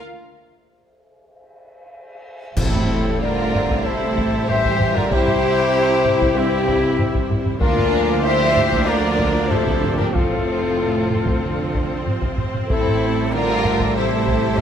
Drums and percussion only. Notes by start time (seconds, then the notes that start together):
2.57 concert bass drum, taiko, crash
2.75 taiko low-mid
3.55 taiko low-mid
3.71 taiko
4.18 taiko
4.49 taiko low-mid
4.65 taiko
4.80 taiko low-mid
4.97 taiko low-mid
5.11 taiko
5.27 taiko low-mid
6.05 taiko low-mid
6.22 taiko
6.68 taiko
6.99 taiko low-mid
7.15 taiko
7.30 taiko low-mid
7.46 taiko low-mid
7.61 taiko
7.77 taiko low-mid
8.57 taiko low-mid
8.73 taiko
9.19 taiko
9.51 taiko low-mid
9.67 taiko
9.83 taiko low-mid
10.00 taiko low-mid
10.15 taiko
10.31 taiko low-mid
11.11 taiko low-mid
11.27 taiko
11.75 taiko
12.07 taiko low-mid
12.22 taiko
12.38 taiko low-mid
12.54 taiko low-mid
12.70 taiko
12.86 taiko low-mid
13.65 taiko low-mid
13.81 taiko
14.27 taiko